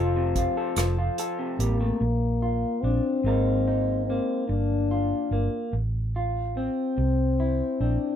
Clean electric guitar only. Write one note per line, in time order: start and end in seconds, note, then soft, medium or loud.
0.00 0.77 F3 medium
0.00 0.36 F4 medium
0.00 0.56 A4 medium
0.16 0.77 C3 medium
0.37 0.97 F4 medium
0.57 1.18 A4 medium
0.78 1.59 F3 medium
0.98 1.96 F4 medium
1.19 1.97 A4 medium
1.39 2.01 C3 medium
1.60 1.80 G3 medium
1.81 2.01 A3 medium
2.02 2.76 A#2 medium
2.42 3.20 F4 soft
2.84 3.20 D4 soft
3.25 4.00 G#2 medium
3.25 4.45 G#3 soft
3.25 4.09 A#3 soft
3.25 3.66 D#4 soft
3.25 4.46 A#4 medium
3.68 4.45 D#4 soft
4.10 5.31 A#3 medium
4.49 5.24 G2 medium
4.91 5.69 F4 soft
5.33 5.74 A#3 soft
5.73 6.48 A2 medium
6.16 6.93 F4 soft
6.57 7.81 C4 soft
6.98 7.73 C3 medium
7.40 8.16 E4 soft
7.81 8.16 C4 soft